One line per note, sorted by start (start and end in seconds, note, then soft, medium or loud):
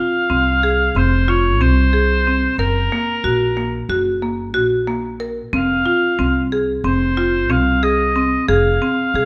0.00 0.24 F4 medium
0.00 0.99 F5 medium
0.30 0.87 C2 medium
0.30 0.57 C4 medium
0.63 0.90 G#4 medium
0.95 1.60 F1 medium
0.95 1.23 C4 medium
0.95 1.30 C5 medium
1.28 1.55 F4 medium
1.28 1.63 C#5 medium
1.60 2.46 C2 medium
1.60 1.88 C4 medium
1.60 2.58 C5 medium
1.93 2.20 G#4 medium
2.27 2.54 C4 medium
2.58 2.87 F#1 medium
2.58 3.86 A#4 medium
2.58 2.86 A#4 medium
2.92 3.19 A#3 medium
3.24 3.81 A#1 medium
3.24 3.51 F#4 medium
3.57 3.84 A#3 medium
3.89 4.54 F#1 medium
3.89 4.16 F#4 medium
4.23 4.49 A#3 medium
4.54 5.40 A#1 medium
4.54 4.81 F#4 medium
4.88 5.15 A#3 medium
5.20 5.47 A#4 medium
5.53 5.82 F1 medium
5.53 5.80 C4 medium
5.53 6.49 F5 medium
5.86 6.13 F4 medium
6.19 6.76 C2 medium
6.19 6.46 C4 medium
6.52 6.79 G#4 medium
6.84 7.49 F1 medium
6.84 7.11 C4 medium
6.84 7.52 C5 medium
7.17 7.44 F4 medium
7.49 8.35 C2 medium
7.49 7.76 C4 medium
7.49 7.85 F5 medium
7.83 8.10 G#4 medium
7.83 8.48 D#5 medium
8.16 8.43 C4 medium
8.49 8.77 F1 medium
8.49 8.75 G#4 medium
8.49 9.25 F5 medium
8.82 9.08 C4 medium
9.14 9.25 C2 medium
9.14 9.25 G#4 medium